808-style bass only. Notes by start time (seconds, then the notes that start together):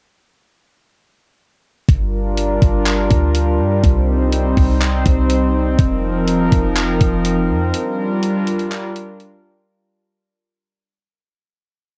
1.89 G1
2.62 G1
3.11 D2
3.59 G2
3.84 C2
4.57 C2
5.06 C2
5.79 F1
6.52 F1
7.01 F1
7.50 F2